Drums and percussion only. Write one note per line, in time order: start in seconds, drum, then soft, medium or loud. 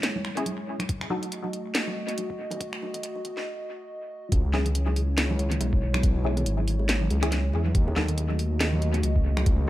0.03 snare loud
0.03 closed hi-hat medium
0.16 high conga medium
0.25 finger snap medium
0.37 closed hi-hat medium
0.46 closed hi-hat medium
0.46 high conga medium
0.79 finger snap soft
0.79 closed hi-hat medium
0.79 high conga loud
0.89 kick loud
0.89 closed hi-hat medium
1.01 finger snap soft
1.10 high conga medium
1.23 closed hi-hat medium
1.32 closed hi-hat medium
1.44 high conga medium
1.53 closed hi-hat medium
1.75 snare loud
1.75 closed hi-hat medium
1.87 high conga loud
2.08 closed hi-hat medium
2.18 closed hi-hat medium
2.18 high conga medium
2.30 kick medium
2.51 closed hi-hat medium
2.51 high conga loud
2.51 low conga loud
2.61 kick loud
2.61 closed hi-hat medium
2.73 finger snap medium
2.82 high conga medium
2.94 closed hi-hat medium
2.94 low conga medium
3.03 closed hi-hat medium
3.15 high conga medium
3.25 closed hi-hat soft
3.25 low conga medium
3.37 snare soft
4.32 kick loud
4.32 closed hi-hat medium
4.53 snare medium
4.53 high bongo medium
4.53 high conga medium
4.65 closed hi-hat medium
4.65 low conga medium
4.75 closed hi-hat medium
4.86 high bongo medium
4.86 high conga medium
4.96 open hi-hat medium
5.18 finger snap medium
5.18 snare loud
5.18 closed hi-hat medium
5.30 high bongo medium
5.30 high conga loud
5.30 low conga loud
5.39 closed hi-hat medium
5.50 closed hi-hat medium
5.50 low conga loud
5.61 closed hi-hat medium
5.61 high bongo medium
5.61 high conga medium
5.73 kick medium
5.94 finger snap medium
5.94 high conga loud
6.03 kick loud
6.03 closed hi-hat medium
6.03 high bongo medium
6.24 high conga medium
6.37 closed hi-hat medium
6.37 high bongo medium
6.37 low conga loud
6.46 closed hi-hat medium
6.58 high conga medium
6.68 open hi-hat medium
6.79 high bongo medium
6.89 snare loud
6.89 closed hi-hat medium
7.01 high conga medium
7.01 low conga medium
7.10 closed hi-hat medium
7.10 high bongo medium
7.23 finger snap medium
7.23 closed hi-hat medium
7.23 low conga medium
7.32 snare medium
7.32 closed hi-hat medium
7.32 high conga medium
7.53 high bongo medium
7.66 high conga medium
7.75 kick loud
7.75 closed hi-hat medium
7.88 high bongo medium
7.96 snare medium
7.96 high conga loud
8.08 closed hi-hat medium
8.08 low conga medium
8.18 closed hi-hat medium
8.30 high bongo medium
8.30 high conga medium
8.39 open hi-hat medium
8.60 finger snap medium
8.60 snare loud
8.60 closed hi-hat medium
8.60 high bongo medium
8.72 high conga loud
8.72 low conga loud
8.82 closed hi-hat medium
8.94 closed hi-hat medium
8.94 low conga loud
9.03 closed hi-hat medium
9.03 high bongo soft
9.03 high conga medium
9.16 kick medium
9.37 finger snap medium
9.37 high bongo medium
9.37 high conga loud
9.46 kick loud
9.46 closed hi-hat medium